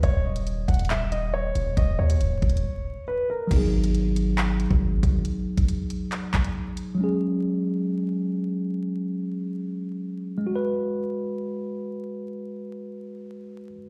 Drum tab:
CC |------------------------------------------------------------------------------------------------|------------------------------------------------------------------------------------------------|x-----------------------------------------------------------------------------------------------|------------------------------------------------------------------------------------------------|
HH |x-----------------x-----x-----------x--x--x--x--x-----------x-----------------------x-----------|x-----------------x-----x-----------x---x---x---------------------------------------------------|x-----------------x-----x-----------x-----------x-----------x-----------------------x-----------|x-----------------x-----x-----------x-----------x-----------x-----x-----------------x-----------|
CP |------------------------------------------------x-----------------------------------------------|------------------------------------------------------------------------------------------------|------------------------------------------------x-----------------------------------------------|------------------------------------------------x-----------x-----------------------------------|
BD |o-----------------------------------o-----------------------------------------------------------|o-----------------------------------o-----------------------------------------------------------|o-----------------------------------------------------------------o-----------------o-----------|------------------o-----------------------------------------o-----------------------------------|

CC |------------------------------------------------------------------------------------------------|------------------------------------------------------------------------------------------------|------------------------------------------------------------------------------------------------|------------------------------------------------------------------------------------------------|
HH |------------------------------------------------------------------------------------------------|------------------------------------------------------------------------------------------------|------------------------------------------------------------------------------------------------|------------------------------------------------------------------------------------------------|
CP |------------------------------------------------------------------------------------------------|------------------------------------------------------------------------------------------------|------------------------------------------------------------------------------------------------|------------------------------------------------------------------------------------------------|
BD |------------------------------------------------------------------------------------------------|------------------------------------------------------------------------------------------------|------------------------------------------------------------------------------------------------|------------------------------------------------------------------------------------------------|